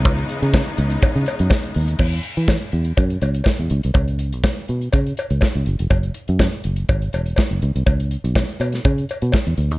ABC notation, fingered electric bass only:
X:1
M:4/4
L:1/16
Q:1/4=123
K:C#m
V:1 name="Fingered electric bass" clef=bass
C,,2 z C,2 z C,,2 z C, z F,, z2 D,,2 | E,,2 z E,2 z E,,2 F,,2 C,,2 z E,, C,, ^B,,, | C,,3 B,,,2 z B,,2 C,2 z C,, z C,, F,,, ^E,,, | F,,,2 z F,,2 z F,,,2 G,,,2 E,,,2 z F,,, C,, ^B,,, |
C,,3 B,,,2 z B,,2 C,2 z B,, z E,, =D,, ^D,, |]